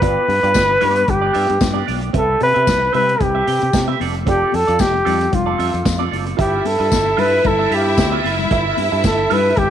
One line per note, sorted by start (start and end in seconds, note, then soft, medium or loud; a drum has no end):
0.00 0.17 G1 medium
0.00 0.26 B3 medium
0.00 0.27 F4 medium
0.00 0.27 G4 loud
0.00 1.12 B4 loud
0.00 0.27 D5 loud
0.00 kick loud
0.00 closed hi-hat medium
0.00 muted conga soft
0.28 0.40 G2 medium
0.28 muted clean electric guitar stroke soft
0.28 open hi-hat medium
0.28 high conga medium
0.43 0.52 G2 loud
0.43 0.54 B3 soft
0.43 0.54 F4 soft
0.43 0.55 G4 medium
0.43 0.55 D5 medium
0.43 closed hi-hat soft
0.54 0.76 G1 medium
0.54 muted clean electric guitar stroke soft
0.54 kick loud
0.54 snare loud
0.54 closed hi-hat medium
0.54 tambourine loud
0.54 muted conga soft
0.54 high conga medium
0.70 muted clean electric guitar stroke medium
0.70 muted conga soft
0.81 1.03 G2 medium
0.81 1.02 B3 medium
0.81 0.96 F4 medium
0.81 0.96 G4 medium
0.81 0.95 D5 medium
0.81 open hi-hat medium
0.81 low conga medium
0.96 muted clean electric guitar stroke soft
0.96 closed hi-hat soft
1.07 1.29 G1 medium
1.07 1.89 G4 medium
1.07 muted clean electric guitar stroke soft
1.07 kick loud
1.07 closed hi-hat medium
1.07 muted conga soft
1.07 low conga medium
1.21 1.32 B3 medium
1.21 1.32 F4 medium
1.21 1.33 G4 medium
1.21 1.34 D5 medium
1.33 1.47 G2 medium
1.33 1.53 B3 medium
1.33 1.48 F4 medium
1.33 1.48 G4 medium
1.33 1.48 E5 medium
1.33 open hi-hat medium
1.48 1.59 G2 medium
1.48 muted clean electric guitar stroke soft
1.48 closed hi-hat medium
1.48 high conga medium
1.59 1.82 G2 loud
1.59 muted clean electric guitar stroke soft
1.59 kick loud
1.59 snare loud
1.59 closed hi-hat medium
1.59 tambourine medium
1.59 high conga medium
1.74 1.85 B3 medium
1.74 1.86 F4 medium
1.74 1.86 G4 medium
1.74 1.87 D5 medium
1.74 muted conga soft
1.74 high conga medium
1.86 2.09 B1 medium
1.86 2.03 B3 medium
1.86 2.01 F4 medium
1.86 2.01 G4 medium
1.86 2.00 D5 medium
1.86 open hi-hat medium
1.86 high conga medium
2.01 muted clean electric guitar stroke soft
2.01 closed hi-hat soft
2.13 2.35 C2 loud
2.13 2.38 C4 medium
2.13 2.39 G4 medium
2.13 2.40 A4 loud
2.13 2.39 B4 medium
2.13 2.39 E5 medium
2.13 kick loud
2.13 closed hi-hat medium
2.40 2.53 C3 loud
2.40 2.91 B4 loud
2.40 open hi-hat medium
2.40 high conga medium
2.54 2.65 C3 medium
2.54 2.65 C4 soft
2.54 2.65 G4 soft
2.54 2.66 B4 medium
2.54 2.66 E5 medium
2.54 closed hi-hat soft
2.67 2.88 C2 medium
2.67 muted clean electric guitar stroke soft
2.67 kick loud
2.67 snare medium
2.67 closed hi-hat medium
2.67 tambourine loud
2.67 muted conga soft
2.67 high conga medium
2.81 muted clean electric guitar stroke soft
2.93 3.15 C3 medium
2.93 3.13 C4 medium
2.93 3.08 G4 medium
2.93 3.07 B4 medium
2.93 3.24 B4 loud
2.93 3.07 E5 medium
2.93 open hi-hat medium
2.93 low conga medium
3.08 muted clean electric guitar stroke soft
3.08 closed hi-hat medium
3.20 3.41 C2 loud
3.20 4.01 G4 medium
3.20 muted clean electric guitar stroke soft
3.20 kick loud
3.20 closed hi-hat medium
3.20 muted conga soft
3.20 low conga medium
3.35 3.45 C4 medium
3.35 3.46 G4 medium
3.35 3.46 B4 medium
3.35 3.48 E5 medium
3.35 muted conga soft
3.46 3.59 C3 medium
3.46 3.66 C4 medium
3.46 3.62 G4 medium
3.46 3.61 B4 medium
3.46 3.62 G5 medium
3.46 open hi-hat medium
3.62 3.71 C3 medium
3.62 muted clean electric guitar stroke soft
3.62 closed hi-hat medium
3.62 high conga medium
3.73 3.94 C3 loud
3.73 muted clean electric guitar stroke soft
3.73 kick loud
3.73 snare loud
3.73 closed hi-hat medium
3.73 tambourine medium
3.73 muted conga soft
3.73 high conga medium
3.88 3.99 C4 medium
3.88 4.00 G4 medium
3.88 4.01 B4 medium
3.88 4.02 E5 medium
3.88 muted conga soft
3.88 high conga medium
4.00 4.42 F1 medium
4.00 4.16 C4 medium
4.00 4.15 F4 medium
4.00 4.15 A4 medium
4.00 4.14 D5 medium
4.00 open hi-hat medium
4.00 high conga medium
4.14 muted clean electric guitar stroke soft
4.14 closed hi-hat soft
4.26 4.51 C4 medium
4.26 4.52 F4 medium
4.26 4.57 G4 medium
4.26 4.52 A4 loud
4.26 4.52 D5 medium
4.26 kick loud
4.26 closed hi-hat medium
4.26 muted conga soft
4.52 4.65 F2 medium
4.52 4.82 A4 loud
4.52 muted clean electric guitar stroke soft
4.52 open hi-hat medium
4.52 high conga medium
4.67 4.77 F2 medium
4.67 4.78 C4 soft
4.67 4.78 F4 soft
4.67 4.79 A4 medium
4.67 4.79 D5 medium
4.67 closed hi-hat soft
4.79 5.00 F1 medium
4.79 5.36 G4 loud
4.79 muted clean electric guitar stroke soft
4.79 kick loud
4.79 snare medium
4.79 closed hi-hat medium
4.79 tambourine medium
4.79 muted conga soft
4.79 high conga medium
4.93 muted clean electric guitar stroke soft
4.93 muted conga soft
5.05 5.27 F2 medium
5.05 5.25 C4 medium
5.05 5.20 F4 medium
5.05 5.19 A4 medium
5.05 5.19 D5 medium
5.05 open hi-hat medium
5.05 low conga medium
5.20 muted clean electric guitar stroke soft
5.20 closed hi-hat medium
5.31 5.54 F1 medium
5.31 6.13 F4 medium
5.31 muted clean electric guitar stroke soft
5.31 kick loud
5.31 closed hi-hat medium
5.31 muted conga soft
5.31 low conga medium
5.46 5.57 C4 medium
5.46 5.58 F4 medium
5.46 5.58 A4 medium
5.46 5.59 D5 medium
5.46 muted conga soft
5.58 5.71 F2 medium
5.58 5.78 C4 medium
5.58 5.73 F4 medium
5.58 5.73 A4 medium
5.58 5.73 E5 medium
5.58 open hi-hat medium
5.73 5.83 F2 medium
5.73 muted clean electric guitar stroke soft
5.73 closed hi-hat medium
5.73 high conga soft
5.85 6.07 F2 medium
5.85 muted clean electric guitar stroke soft
5.85 kick loud
5.85 snare loud
5.85 closed hi-hat medium
5.85 tambourine medium
5.85 high conga medium
5.99 6.09 C4 medium
5.99 6.10 F4 medium
5.99 6.11 A4 medium
5.99 6.11 D5 medium
5.99 muted conga soft
5.99 high conga medium
6.11 6.33 F#1 medium
6.11 6.27 C4 medium
6.11 6.26 F4 medium
6.11 6.26 A4 medium
6.11 6.25 D5 medium
6.11 open hi-hat medium
6.11 high conga medium
6.26 muted clean electric guitar stroke soft
6.26 closed hi-hat soft
6.37 6.60 G1 loud
6.37 9.70 E4 medium
6.37 6.63 F4 medium
6.37 6.68 G4 medium
6.37 6.63 A4 medium
6.37 6.63 B4 medium
6.37 6.63 E5 loud
6.37 9.70 E5 medium
6.37 kick loud
6.37 closed hi-hat medium
6.55 muted conga soft
6.64 6.77 G2 medium
6.64 7.21 A4 medium
6.64 muted clean electric guitar stroke soft
6.64 open hi-hat medium
6.64 high conga medium
6.79 6.89 G2 loud
6.79 6.89 F4 soft
6.79 6.90 A4 medium
6.79 6.90 B4 medium
6.79 6.90 E5 medium
6.91 7.13 G1 medium
6.91 muted clean electric guitar stroke soft
6.91 kick loud
6.91 snare medium
6.91 closed hi-hat medium
6.91 tambourine medium
6.91 high conga medium
7.06 muted clean electric guitar stroke medium
7.06 muted conga soft
7.17 7.39 G2 medium
7.17 7.37 F4 medium
7.17 7.32 A4 medium
7.17 7.32 B4 medium
7.17 7.49 B4 loud
7.17 7.31 E5 medium
7.17 open hi-hat medium
7.17 low conga medium
7.32 muted clean electric guitar stroke soft
7.44 7.66 G1 medium
7.44 7.76 A4 medium
7.44 muted clean electric guitar stroke soft
7.44 kick loud
7.44 closed hi-hat medium
7.44 muted conga soft
7.44 low conga medium
7.59 7.69 F4 soft
7.59 7.70 A4 medium
7.59 7.71 B4 medium
7.59 7.72 E5 medium
7.59 muted conga soft
7.70 7.99 G2 medium
7.70 7.91 F4 medium
7.70 8.26 G4 medium
7.70 7.86 A4 medium
7.70 7.85 B4 loud
7.70 7.85 F5 medium
7.70 open hi-hat medium
7.86 muted clean electric guitar stroke soft
7.86 high conga soft
7.97 8.19 D2 medium
7.97 muted clean electric guitar stroke soft
7.97 kick loud
7.97 snare loud
7.97 closed hi-hat medium
7.97 tambourine medium
7.97 muted conga soft
7.97 high conga medium
8.12 8.23 F4 medium
8.12 8.23 A4 medium
8.12 8.24 B4 medium
8.12 8.24 E5 medium
8.12 muted conga soft
8.12 high conga medium
8.24 8.45 F#1 medium
8.24 8.40 F4 medium
8.24 8.39 A4 medium
8.24 8.39 B4 medium
8.24 8.38 E5 medium
8.24 open hi-hat medium
8.24 high conga medium
8.39 muted clean electric guitar stroke soft
8.39 low conga medium
8.50 8.72 G1 loud
8.50 8.76 F4 medium
8.50 8.76 A4 medium
8.50 8.76 B4 medium
8.50 8.77 E5 loud
8.50 kick loud
8.50 closed hi-hat medium
8.50 muted conga soft
8.77 8.90 G2 loud
8.77 muted clean electric guitar stroke soft
8.77 open hi-hat medium
8.77 high conga medium
8.92 9.02 G2 loud
8.92 9.03 F4 medium
8.92 9.03 A4 medium
8.92 9.04 B4 medium
8.92 9.04 E5 medium
9.04 9.25 G1 medium
9.04 9.35 A4 medium
9.04 muted clean electric guitar stroke soft
9.04 kick loud
9.04 snare medium
9.04 closed hi-hat medium
9.04 tambourine loud
9.04 high conga medium
9.19 muted clean electric guitar stroke soft
9.30 9.52 G2 medium
9.30 9.50 F4 medium
9.30 9.45 A4 medium
9.30 9.45 B4 medium
9.30 9.60 B4 loud
9.30 9.44 E5 loud
9.30 open hi-hat medium
9.30 low conga medium
9.45 muted clean electric guitar stroke soft
9.57 9.70 G1 medium
9.57 9.70 G4 medium
9.57 muted clean electric guitar stroke soft
9.57 kick loud
9.57 closed hi-hat medium
9.57 muted conga soft
9.57 low conga medium